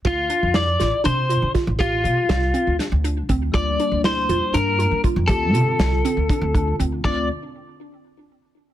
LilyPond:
<<
  \new Staff \with { instrumentName = "Lead electric guitar" } { \time 7/8 \key d \minor \tempo 4 = 120 f'4 d''4 c''4 r8 | f'2 r4. | d''4 c''4 bes'4 r8 | a'2. r8 |
d''8 r2. | }
  \new Staff \with { instrumentName = "Synth arpeggio sound" } { \time 7/8 \key d \minor f'8 d'8 e'8 f'8 d'8 f'8 f'8 | g'8 f'8 f'8 c'8 d'8 d'8 c'8 | f'8 d'8 e'8 f'8 d'8 f'8 f'8 | g'8 f'8 f'8 c'8 d'8 d'8 c'8 |
d'8 r2. | }
  \new Staff \with { instrumentName = "Tine electric piano" } { \time 7/8 \key d \minor r2. r8 | r2. r8 | <g bes d'>2.~ <g bes d'>8 | <d c' f'>2.~ <d c' f'>8 |
<d c' f'>8 r2. | }
  \new Staff \with { instrumentName = "Upright bass" } { \clef bass \time 7/8 \key d \minor d,8 r16 f,8. a,,16 r16 c8. d8 a,,16~ | a,,8 c16 r16 c,8 r16 d,16 r16 d,8. d,8 | d,8 r16 d,8. f,16 r16 g,8. d8 f,16 | d,8 c16 r16 c,8 r16 d,16 r16 d,8. d,8 |
d,8 r2. | }
  \new DrumStaff \with { instrumentName = "Drums" } \drummode { \time 7/8 <hh bd>8 hh8 <hh sn>8 <hh sn>8 hh8 hh8 <hh bd sn>8 | <hh bd>8 hh8 <hh sn>8 hh8 <hh sn>8 hh8 <hh bd>8 | <hh bd>8 hh8 <hh sn>8 hh8 hh8 hh8 <hh bd>8 | <hh bd>8 hh8 <hh sn>8 hh8 <hh bd>8 <hh bd>8 hh8 |
<cymc bd>4 r4 r4. | }
>>